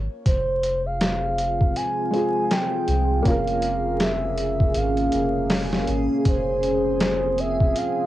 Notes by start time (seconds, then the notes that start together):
Already playing: A#3 C#4 F4 A#4
0.24 F1 C4 F4 G#4 C5, kick, closed hi-hat
0.64 closed hi-hat
0.86 F5
1.01 snare, closed hi-hat
1.38 closed hi-hat
1.61 kick
1.76 G#5, closed hi-hat
2.11 G#3 C4, closed hi-hat
2.16 F4 G#4
2.51 G5, snare, closed hi-hat
2.88 C2, closed hi-hat
3.23 F1 A#3 C#4 G#4, kick, closed hi-hat
3.27 F4 A#4 F5
3.47 closed hi-hat
3.62 closed hi-hat
4.00 E5, snare, closed hi-hat
4.37 closed hi-hat
4.60 kick
4.74 G#1 F5, closed hi-hat
4.97 closed hi-hat
5.12 F1, closed hi-hat
5.50 snare, open hi-hat
5.73 snare
5.88 G#1, closed hi-hat
6.25 F1 C4 F4 C5, kick, closed hi-hat
6.63 closed hi-hat
7.00 snare, closed hi-hat
7.38 E5, closed hi-hat
7.60 kick
7.76 F5, closed hi-hat